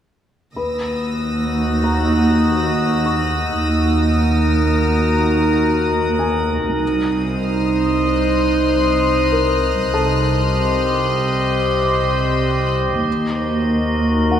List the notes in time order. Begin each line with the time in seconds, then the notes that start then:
0.56 D#2 D#4 F#4 B4 B5 D#6 E6 A#6
1.84 A#5
3.06 C#6
3.69 D#2 D#4 F#4 A#4
4.53 F6
6.19 G#5
6.81 C2 D#4 C5 D#5 D#6
7.43 F6
8.06 F#6
9.32 A#4
9.94 C2 G4 A4 C5 D#5 A5
11.39 E6
13.05 D#2 F#4 A#4 D#5
14.31 F#5